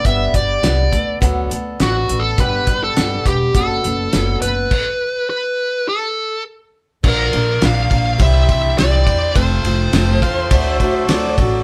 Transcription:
<<
  \new Staff \with { instrumentName = "Pedal steel guitar" } { \time 4/4 \key d \mixolydian \tempo 4 = 103 r1 | r1 | r1 | r1 |
r4. f''8 e''8 e''8 d''8 r8 | }
  \new Staff \with { instrumentName = "Lead electric guitar" } { \time 4/4 \key d \mixolydian e''8 d''4. r4 \tuplet 3/2 { fis'4 a'8 } | b'8. a'8. g'8 a'4. b'8~ | b'4 b'4 a'4 r4 | bes'4 f''4 e''4 d''4 |
c''2.~ c''8 r8 | }
  \new Staff \with { instrumentName = "Harmonium" } { \time 4/4 \key d \mixolydian << { r1 | r1 | r1 | <f bes'>2 <e g'>2 |
<f a'>2 <fis a'>2 | } \\ { r1 | r1 | r1 | d'2 c'2~ |
c'2 d'2 | } >> }
  \new Staff \with { instrumentName = "Steel-string acoustic guitar" } { \time 4/4 \key d \mixolydian <g, d g b d' g'>8 <g b d' g'>8 <g b d' g'>8 <b d' a'>8 <d fis b d' a'>8 <b d' a'>8 <fis b d' a'>8 <b d' a'>8 | <g, d g b d' g'>8 <g b d' g'>8 <g b d' g'>8 <g b d' g'>8 <fis b d' a'>8 <b d' a'>8 <fis b d' a'>8 <b d' a'>8 | r1 | <bes, d f bes d' bes'>8 <f bes d' bes'>8 <f bes d' bes'>8 <f bes d' bes'>8 <c g c' e' c''>8 <c' e' c''>8 <g c' e' c''>8 <c' e' c''>8 |
<f a c' f' a'>8 <c' f' a'>8 <a c' f' a'>8 <c' f' a'>8 <d a d' fis' a'>8 <d' fis' a'>8 <a d' fis' a'>8 <d' fis' a'>8 | }
  \new Staff \with { instrumentName = "Upright bass" } { \clef bass \time 4/4 \key d \mixolydian g,,8 g,,8 c,8 d,8 d,8 d,8 a,,8 a,,8 | g,,8 g,,8 g,,8 e,,8 fis,,8 fis,,8 fis,,8 fis,,8 | r1 | bes,,8 bes,,8 bes,,8 bes,,8 c,8 c,8 c,8 e,8 |
f,,8 f,,8 f,,8 r8 d,8 d,8 d,8 a,,8 | }
  \new DrumStaff \with { instrumentName = "Drums" } \drummode { \time 4/4 <hh bd>8 <hh bd>8 <hh sn>8 <hh bd>8 <hh bd>8 hh8 <hh sn>8 hh8 | <hh bd>8 <hh bd>8 <hh sn>8 <hh bd>8 <hh bd>8 hh8 <hh sn>8 hh8 | <cymc bd>4 r4 r4 r4 | <cymc bd>8 cymr8 <cymr sn>8 <bd cymr>8 <bd cymr>8 <bd cymr>8 <cymr sn>8 <bd cymr>8 |
<bd cymr>8 cymr8 <cymr sn>8 <bd cymr>8 <bd cymr>8 <bd cymr>8 <cymr sn>8 <bd cymr>8 | }
>>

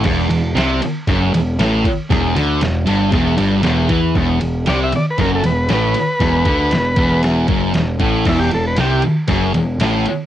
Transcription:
<<
  \new Staff \with { instrumentName = "Transistor combo organ" } { \time 4/4 \key e \minor \tempo 4 = 117 r1 | r1 | r4 d''16 e''16 d''16 b'16 ais'16 a'16 b'8 b'4~ | b'2 r2 |
e'16 g'16 a'16 b'16 g'8 r2 r8 | }
  \new Staff \with { instrumentName = "Distorted electric guitar" } { \clef bass \time 4/4 \key e \minor e,8 e,8 c8 r8 fis,8 e,8 a,8 r8 | e,8 d8 e,8 g,8 e,8 g,8 e,8 e8 | e,8 e,8 c8 r8 fis,8 e,8 a,8 r8 | e,8 d8 e,8 e,4 fis,8 e,8 a,8 |
e,8 e,8 c8 r8 fis,8 e,8 a,8 r8 | }
  \new Staff \with { instrumentName = "Picked electric bass" } { \clef bass \time 4/4 \key e \minor e,,8 e,,8 c,8 r8 fis,,8 e,,8 a,,8 r8 | e,,8 d,8 e,,8 g,,8 e,,8 g,,8 e,,8 e,8 | e,,8 e,,8 c,8 r8 fis,,8 e,,8 a,,8 r8 | e,,8 d,8 e,,8 e,,4 fis,,8 e,,8 a,,8 |
e,,8 e,,8 c,8 r8 fis,,8 e,,8 a,,8 r8 | }
  \new DrumStaff \with { instrumentName = "Drums" } \drummode { \time 4/4 <cymc bd sn>8 cymr8 <cymr sn>8 cymr8 <bd cymr sn>8 cymr8 <cymr sn>8 <bd cymr>8 | <bd cymr sn>8 cymr8 <cymr sn>8 cymr8 <bd cymr sn>8 cymr8 <cymr sn>8 <bd cymr>8 | <bd cymr sn>8 cymr8 <cymr sn>8 cymr8 <bd cymr sn>8 cymr8 <cymr sn>8 cymr8 | <bd cymr sn>8 <bd cymr>8 <cymr sn>8 <bd cymr>8 <cymr sn>8 <bd cymr>8 <cymr sn>8 <bd cymr>8 |
<cymc bd sn>8 cymr8 <cymr sn>8 cymr8 <bd cymr sn>8 cymr8 <cymr sn>8 cymr8 | }
>>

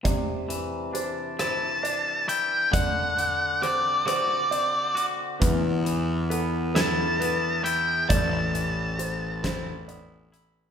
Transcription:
<<
  \new Staff \with { instrumentName = "Lead electric guitar" } { \time 6/8 \key c \lydian \tempo 4. = 45 r4. a''4 g''8 | fis''4 d''8 d''4 r8 | r4. a''4 g''8 | a''2 r4 | }
  \new Staff \with { instrumentName = "Felt piano" } { \time 6/8 \key c \lydian d''4 c''8 c''8 d''4 | d''4 c''8 c''8 d''4 | b'4 a'8 a'8 b'4 | d''4 c''8 c''8 d''4 | }
  \new Staff \with { instrumentName = "Clean electric guitar" } { \time 6/8 \key c \lydian c8 e8 d'8 e'8 d'8 e'8 | d8 d8 c'8 fis'8 c'8 fis'8 | e,8 e8 b8 e'8 b8 e'8 | a,8 e4 e'8 b8 e'8 | }
  \new Staff \with { instrumentName = "Picked electric bass" } { \clef bass \time 6/8 \key c \lydian r2. | r2. | e,2. | a,,2. | }
  \new DrumStaff \with { instrumentName = "Drums" } \drummode { \time 6/8 <hh bd>8 hh8 hh8 <hh ss>8 hh8 hh8 | <hh bd>8 hh8 hh8 <hh ss>8 hh8 hh8 | <hh bd>8 hh8 hh8 <hh sn>8 hh8 hh8 | <hh bd>8 hh8 hh8 <hh bd sn>8 hh8 hh8 | }
>>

